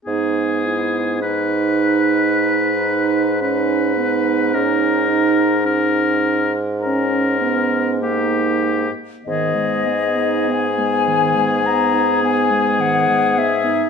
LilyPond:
<<
  \new Staff \with { instrumentName = "Flute" } { \time 4/4 \key gis \minor \tempo 4 = 52 r1 | r1 | dis''4 gis''4 ais''8 gis''8 fis''8 e''8 | }
  \new Staff \with { instrumentName = "Oboe" } { \time 4/4 \key gis \minor gis'4 b'2 b'4 | ais'4 ais'8. r16 ais'4 g'8 r8 | gis'1 | }
  \new Staff \with { instrumentName = "French horn" } { \time 4/4 \key gis \minor b4 dis'2 cis'8 b8 | cis'8 dis'4~ dis'16 r16 cis'8 b8 ais8 r8 | b1 | }
  \new Staff \with { instrumentName = "Clarinet" } { \time 4/4 \key gis \minor dis'8 e'8 dis'2 dis'4~ | dis'4 cis'8. r16 cis'4 dis'8. r16 | dis16 gis16 b16 dis'16 b16 gis16 dis16 gis16 b16 dis'16 b16 gis16 dis16 gis16 b16 dis'16 | }
  \new Staff \with { instrumentName = "Bassoon" } { \clef bass \time 4/4 \key gis \minor gis,1 | gis,2.~ gis,8 r8 | gis,1 | }
>>